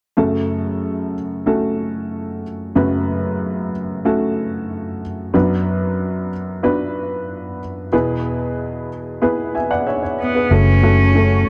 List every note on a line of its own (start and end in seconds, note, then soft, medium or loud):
0.17 2.72 F#2 soft
0.17 2.72 C#3 soft
0.17 1.13 A3 medium
0.17 1.13 C#4 medium
0.17 1.13 F#4 medium
0.17 1.13 A4 medium
1.46 2.42 A3 medium
1.46 2.42 C#4 soft
1.46 2.43 F#4 medium
1.46 2.43 A4 medium
2.75 5.30 F#2 medium
2.75 5.30 C#3 soft
2.75 3.72 A3 medium
2.75 3.72 C#4 medium
2.75 3.72 F#4 medium
2.75 3.72 B4 medium
4.05 5.01 A3 medium
4.05 5.01 C#4 medium
4.05 5.01 F#4 medium
4.05 5.01 A4 medium
5.34 7.89 F#2 medium
5.34 7.89 F#3 medium
5.34 6.30 B3 medium
5.34 6.30 D4 medium
5.34 6.30 F#4 medium
5.34 6.30 B4 medium
6.63 7.59 B3 medium
6.63 7.59 D4 medium
6.63 7.59 F#4 medium
6.63 7.60 B4 medium
7.92 10.47 E2 medium
7.92 10.47 B2 medium
7.92 8.88 B3 medium
7.92 8.88 E4 medium
7.92 8.89 G#4 medium
7.92 8.89 B4 medium
9.22 10.18 B3 medium
9.22 10.18 E4 medium
9.22 9.54 G#4 medium
9.22 9.54 B4 medium
9.55 9.70 E5 soft
9.55 9.70 G#5 soft
9.71 9.86 D5 soft
9.71 9.86 F#5 soft
9.87 10.01 C#5 soft
9.87 10.02 E5 soft
10.03 10.33 C#5 soft
10.20 10.54 B3 medium
10.35 10.66 G#4 soft
10.35 10.65 B4 medium
10.51 11.44 F#1 medium
10.51 11.44 C#3 soft
10.51 10.75 A3 medium
10.51 10.75 C#4 medium
10.51 11.49 C#4 medium
10.51 10.75 F#4 soft
10.51 11.49 F#4 medium
10.51 10.75 A4 medium
10.51 11.49 C#5 medium
10.51 11.49 A5 medium
10.51 11.49 C#6 medium
10.83 11.07 A3 medium
10.83 11.07 C#4 medium
10.83 11.07 F#4 medium
10.83 11.07 A4 medium
11.15 11.49 A3 soft
11.15 11.49 C#4 soft
11.15 11.49 F#4 soft
11.15 11.49 A4 medium